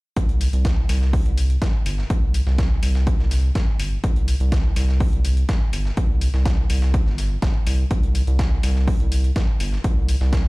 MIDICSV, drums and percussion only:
0, 0, Header, 1, 2, 480
1, 0, Start_track
1, 0, Tempo, 483871
1, 165, Time_signature, 4, 2, 24, 8
1, 10396, End_track
2, 0, Start_track
2, 0, Title_t, "Drums"
2, 164, Note_on_c, 9, 36, 114
2, 164, Note_on_c, 9, 42, 88
2, 263, Note_off_c, 9, 36, 0
2, 263, Note_off_c, 9, 42, 0
2, 288, Note_on_c, 9, 42, 43
2, 387, Note_off_c, 9, 42, 0
2, 404, Note_on_c, 9, 42, 65
2, 405, Note_on_c, 9, 46, 97
2, 504, Note_off_c, 9, 42, 0
2, 504, Note_off_c, 9, 46, 0
2, 528, Note_on_c, 9, 42, 41
2, 627, Note_off_c, 9, 42, 0
2, 644, Note_on_c, 9, 36, 114
2, 644, Note_on_c, 9, 38, 114
2, 644, Note_on_c, 9, 42, 86
2, 743, Note_off_c, 9, 38, 0
2, 743, Note_off_c, 9, 42, 0
2, 744, Note_off_c, 9, 36, 0
2, 884, Note_on_c, 9, 38, 45
2, 884, Note_on_c, 9, 42, 69
2, 885, Note_on_c, 9, 46, 103
2, 983, Note_off_c, 9, 38, 0
2, 983, Note_off_c, 9, 42, 0
2, 984, Note_off_c, 9, 46, 0
2, 1008, Note_on_c, 9, 38, 41
2, 1107, Note_off_c, 9, 38, 0
2, 1124, Note_on_c, 9, 36, 113
2, 1124, Note_on_c, 9, 46, 80
2, 1224, Note_off_c, 9, 36, 0
2, 1224, Note_off_c, 9, 46, 0
2, 1247, Note_on_c, 9, 42, 42
2, 1346, Note_off_c, 9, 42, 0
2, 1364, Note_on_c, 9, 42, 67
2, 1365, Note_on_c, 9, 46, 101
2, 1463, Note_off_c, 9, 42, 0
2, 1464, Note_off_c, 9, 46, 0
2, 1487, Note_on_c, 9, 42, 44
2, 1587, Note_off_c, 9, 42, 0
2, 1604, Note_on_c, 9, 36, 117
2, 1604, Note_on_c, 9, 38, 115
2, 1604, Note_on_c, 9, 42, 85
2, 1703, Note_off_c, 9, 38, 0
2, 1703, Note_off_c, 9, 42, 0
2, 1704, Note_off_c, 9, 36, 0
2, 1844, Note_on_c, 9, 42, 65
2, 1845, Note_on_c, 9, 46, 104
2, 1943, Note_off_c, 9, 42, 0
2, 1944, Note_off_c, 9, 46, 0
2, 1967, Note_on_c, 9, 38, 41
2, 2066, Note_off_c, 9, 38, 0
2, 2084, Note_on_c, 9, 36, 120
2, 2084, Note_on_c, 9, 42, 86
2, 2183, Note_off_c, 9, 42, 0
2, 2184, Note_off_c, 9, 36, 0
2, 2324, Note_on_c, 9, 42, 68
2, 2325, Note_on_c, 9, 46, 105
2, 2423, Note_off_c, 9, 42, 0
2, 2424, Note_off_c, 9, 46, 0
2, 2447, Note_on_c, 9, 38, 47
2, 2546, Note_off_c, 9, 38, 0
2, 2564, Note_on_c, 9, 36, 121
2, 2564, Note_on_c, 9, 38, 112
2, 2564, Note_on_c, 9, 42, 88
2, 2663, Note_off_c, 9, 38, 0
2, 2663, Note_off_c, 9, 42, 0
2, 2664, Note_off_c, 9, 36, 0
2, 2804, Note_on_c, 9, 42, 67
2, 2805, Note_on_c, 9, 46, 105
2, 2903, Note_off_c, 9, 42, 0
2, 2904, Note_off_c, 9, 46, 0
2, 2927, Note_on_c, 9, 38, 52
2, 3027, Note_off_c, 9, 38, 0
2, 3044, Note_on_c, 9, 36, 121
2, 3044, Note_on_c, 9, 42, 87
2, 3143, Note_off_c, 9, 42, 0
2, 3144, Note_off_c, 9, 36, 0
2, 3167, Note_on_c, 9, 38, 38
2, 3267, Note_off_c, 9, 38, 0
2, 3284, Note_on_c, 9, 38, 37
2, 3284, Note_on_c, 9, 42, 67
2, 3285, Note_on_c, 9, 46, 106
2, 3383, Note_off_c, 9, 38, 0
2, 3383, Note_off_c, 9, 42, 0
2, 3384, Note_off_c, 9, 46, 0
2, 3524, Note_on_c, 9, 38, 111
2, 3524, Note_on_c, 9, 42, 84
2, 3525, Note_on_c, 9, 36, 119
2, 3623, Note_off_c, 9, 38, 0
2, 3623, Note_off_c, 9, 42, 0
2, 3624, Note_off_c, 9, 36, 0
2, 3765, Note_on_c, 9, 42, 67
2, 3765, Note_on_c, 9, 46, 106
2, 3864, Note_off_c, 9, 42, 0
2, 3864, Note_off_c, 9, 46, 0
2, 4004, Note_on_c, 9, 42, 86
2, 4005, Note_on_c, 9, 36, 123
2, 4103, Note_off_c, 9, 42, 0
2, 4104, Note_off_c, 9, 36, 0
2, 4128, Note_on_c, 9, 42, 44
2, 4227, Note_off_c, 9, 42, 0
2, 4244, Note_on_c, 9, 42, 69
2, 4245, Note_on_c, 9, 46, 107
2, 4344, Note_off_c, 9, 42, 0
2, 4344, Note_off_c, 9, 46, 0
2, 4368, Note_on_c, 9, 42, 43
2, 4467, Note_off_c, 9, 42, 0
2, 4484, Note_on_c, 9, 38, 115
2, 4484, Note_on_c, 9, 42, 89
2, 4485, Note_on_c, 9, 36, 123
2, 4583, Note_off_c, 9, 38, 0
2, 4583, Note_off_c, 9, 42, 0
2, 4584, Note_off_c, 9, 36, 0
2, 4724, Note_on_c, 9, 38, 44
2, 4724, Note_on_c, 9, 42, 68
2, 4725, Note_on_c, 9, 46, 109
2, 4823, Note_off_c, 9, 38, 0
2, 4823, Note_off_c, 9, 42, 0
2, 4824, Note_off_c, 9, 46, 0
2, 4848, Note_on_c, 9, 38, 41
2, 4947, Note_off_c, 9, 38, 0
2, 4964, Note_on_c, 9, 46, 79
2, 4965, Note_on_c, 9, 36, 121
2, 5063, Note_off_c, 9, 46, 0
2, 5064, Note_off_c, 9, 36, 0
2, 5087, Note_on_c, 9, 42, 44
2, 5186, Note_off_c, 9, 42, 0
2, 5204, Note_on_c, 9, 42, 66
2, 5205, Note_on_c, 9, 46, 110
2, 5303, Note_off_c, 9, 42, 0
2, 5304, Note_off_c, 9, 46, 0
2, 5327, Note_on_c, 9, 42, 44
2, 5427, Note_off_c, 9, 42, 0
2, 5444, Note_on_c, 9, 36, 122
2, 5444, Note_on_c, 9, 38, 114
2, 5444, Note_on_c, 9, 42, 87
2, 5543, Note_off_c, 9, 38, 0
2, 5543, Note_off_c, 9, 42, 0
2, 5544, Note_off_c, 9, 36, 0
2, 5683, Note_on_c, 9, 42, 67
2, 5685, Note_on_c, 9, 46, 106
2, 5783, Note_off_c, 9, 42, 0
2, 5784, Note_off_c, 9, 46, 0
2, 5807, Note_on_c, 9, 38, 40
2, 5906, Note_off_c, 9, 38, 0
2, 5924, Note_on_c, 9, 42, 85
2, 5925, Note_on_c, 9, 36, 117
2, 6023, Note_off_c, 9, 42, 0
2, 6024, Note_off_c, 9, 36, 0
2, 6163, Note_on_c, 9, 42, 66
2, 6165, Note_on_c, 9, 46, 104
2, 6262, Note_off_c, 9, 42, 0
2, 6264, Note_off_c, 9, 46, 0
2, 6287, Note_on_c, 9, 38, 47
2, 6386, Note_off_c, 9, 38, 0
2, 6404, Note_on_c, 9, 38, 115
2, 6404, Note_on_c, 9, 42, 87
2, 6405, Note_on_c, 9, 36, 119
2, 6503, Note_off_c, 9, 38, 0
2, 6503, Note_off_c, 9, 42, 0
2, 6504, Note_off_c, 9, 36, 0
2, 6644, Note_on_c, 9, 42, 68
2, 6645, Note_on_c, 9, 46, 107
2, 6743, Note_off_c, 9, 42, 0
2, 6744, Note_off_c, 9, 46, 0
2, 6767, Note_on_c, 9, 38, 53
2, 6866, Note_off_c, 9, 38, 0
2, 6884, Note_on_c, 9, 42, 85
2, 6885, Note_on_c, 9, 36, 121
2, 6983, Note_off_c, 9, 42, 0
2, 6984, Note_off_c, 9, 36, 0
2, 7007, Note_on_c, 9, 38, 37
2, 7106, Note_off_c, 9, 38, 0
2, 7124, Note_on_c, 9, 38, 37
2, 7124, Note_on_c, 9, 42, 66
2, 7125, Note_on_c, 9, 46, 106
2, 7223, Note_off_c, 9, 38, 0
2, 7223, Note_off_c, 9, 42, 0
2, 7224, Note_off_c, 9, 46, 0
2, 7364, Note_on_c, 9, 38, 113
2, 7364, Note_on_c, 9, 42, 85
2, 7365, Note_on_c, 9, 36, 120
2, 7463, Note_off_c, 9, 38, 0
2, 7463, Note_off_c, 9, 42, 0
2, 7464, Note_off_c, 9, 36, 0
2, 7604, Note_on_c, 9, 42, 66
2, 7605, Note_on_c, 9, 46, 103
2, 7703, Note_off_c, 9, 42, 0
2, 7705, Note_off_c, 9, 46, 0
2, 7844, Note_on_c, 9, 42, 88
2, 7845, Note_on_c, 9, 36, 117
2, 7943, Note_off_c, 9, 42, 0
2, 7944, Note_off_c, 9, 36, 0
2, 7967, Note_on_c, 9, 42, 44
2, 8066, Note_off_c, 9, 42, 0
2, 8084, Note_on_c, 9, 42, 66
2, 8085, Note_on_c, 9, 46, 101
2, 8183, Note_off_c, 9, 42, 0
2, 8184, Note_off_c, 9, 46, 0
2, 8207, Note_on_c, 9, 42, 43
2, 8306, Note_off_c, 9, 42, 0
2, 8323, Note_on_c, 9, 38, 118
2, 8323, Note_on_c, 9, 42, 88
2, 8325, Note_on_c, 9, 36, 115
2, 8423, Note_off_c, 9, 38, 0
2, 8423, Note_off_c, 9, 42, 0
2, 8424, Note_off_c, 9, 36, 0
2, 8564, Note_on_c, 9, 38, 45
2, 8564, Note_on_c, 9, 42, 67
2, 8565, Note_on_c, 9, 46, 102
2, 8663, Note_off_c, 9, 38, 0
2, 8663, Note_off_c, 9, 42, 0
2, 8664, Note_off_c, 9, 46, 0
2, 8687, Note_on_c, 9, 38, 41
2, 8787, Note_off_c, 9, 38, 0
2, 8804, Note_on_c, 9, 36, 113
2, 8804, Note_on_c, 9, 46, 82
2, 8904, Note_off_c, 9, 36, 0
2, 8904, Note_off_c, 9, 46, 0
2, 8928, Note_on_c, 9, 42, 42
2, 9027, Note_off_c, 9, 42, 0
2, 9045, Note_on_c, 9, 42, 67
2, 9045, Note_on_c, 9, 46, 103
2, 9144, Note_off_c, 9, 42, 0
2, 9144, Note_off_c, 9, 46, 0
2, 9168, Note_on_c, 9, 42, 42
2, 9267, Note_off_c, 9, 42, 0
2, 9284, Note_on_c, 9, 36, 118
2, 9284, Note_on_c, 9, 38, 116
2, 9284, Note_on_c, 9, 42, 83
2, 9383, Note_off_c, 9, 38, 0
2, 9383, Note_off_c, 9, 42, 0
2, 9384, Note_off_c, 9, 36, 0
2, 9524, Note_on_c, 9, 42, 67
2, 9525, Note_on_c, 9, 46, 102
2, 9623, Note_off_c, 9, 42, 0
2, 9624, Note_off_c, 9, 46, 0
2, 9647, Note_on_c, 9, 38, 41
2, 9746, Note_off_c, 9, 38, 0
2, 9764, Note_on_c, 9, 42, 87
2, 9765, Note_on_c, 9, 36, 109
2, 9863, Note_off_c, 9, 42, 0
2, 9864, Note_off_c, 9, 36, 0
2, 10004, Note_on_c, 9, 42, 68
2, 10005, Note_on_c, 9, 46, 96
2, 10104, Note_off_c, 9, 42, 0
2, 10104, Note_off_c, 9, 46, 0
2, 10128, Note_on_c, 9, 38, 47
2, 10227, Note_off_c, 9, 38, 0
2, 10244, Note_on_c, 9, 36, 113
2, 10244, Note_on_c, 9, 38, 116
2, 10244, Note_on_c, 9, 42, 87
2, 10343, Note_off_c, 9, 38, 0
2, 10343, Note_off_c, 9, 42, 0
2, 10344, Note_off_c, 9, 36, 0
2, 10396, End_track
0, 0, End_of_file